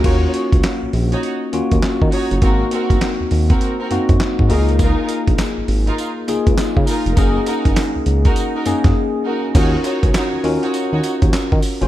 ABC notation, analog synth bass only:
X:1
M:4/4
L:1/16
Q:"Swing 16ths" 1/4=101
K:Ebdor
V:1 name="Analog synth bass" clef=bass
E,,2 z D,, z B,,, B,,,2 z2 E,, E,, z E, z G,,, | A,,,2 z G,,, z E,, E,,2 z2 G,, G,, z A,, D,,2- | D,,2 z B,,, z A,,, A,,,2 z2 D,, D,, z D, z F,,, | G,,,2 z G,,, z D,, D,,2 z2 G,, G,, z4 |
E,,2 z D,, z E,, E,, z2 E,, z E,, z E, z G,,, |]